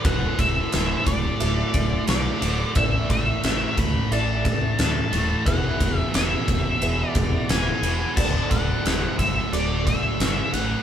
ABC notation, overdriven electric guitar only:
X:1
M:4/4
L:1/8
Q:1/4=89
K:D
V:1 name="Overdriven electric guitar" clef=bass
[D,,A,,D,]6- [D,,A,,D,] [D,,A,,D,] | [A,,E,A,]6- [A,,E,A,] [A,,E,A,] | [E,,B,,E,]6- [E,,B,,E,] [E,,B,,E,] | [D,,A,,D,]6- [D,,A,,D,] [D,,A,,D,] |]